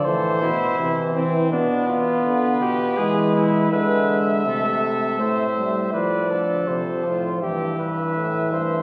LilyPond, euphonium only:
\new Staff \with { instrumentName = "Euphonium" } { \clef bass \time 4/4 \key f \major \tempo 4 = 81 a,8 b,8 c8 e8 b,8 r8 d8 b,8 | e4 d4 c4 a,4 | a,8 d8 c8 a,8 g,8 g,8 a,8 g,8 | }